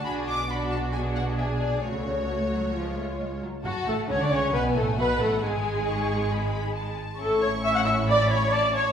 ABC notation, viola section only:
X:1
M:4/4
L:1/16
Q:1/4=135
K:F#m
V:1 name="Viola section"
[DF]4 [DF]4 [DG]8 | [A,F]8 [G,^E]6 z2 | F2 A2 c d c2 B2 A2 B2 A2 | G12- G2 z2 |
A2 c2 e f e2 d2 c2 d2 c2 |]